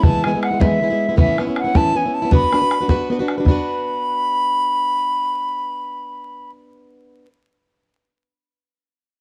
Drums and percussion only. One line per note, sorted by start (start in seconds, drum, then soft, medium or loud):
0.03 bodhran loud
0.14 bodhran soft
0.24 bodhran medium
0.43 bodhran medium
0.61 bodhran medium
1.18 bodhran loud
1.28 bodhran soft
1.38 bodhran medium
1.56 bodhran medium
1.75 bodhran medium
2.32 bodhran medium
2.43 bodhran soft
2.53 bodhran soft
2.71 bodhran medium
2.89 bodhran medium
3.28 bodhran medium
3.46 bodhran medium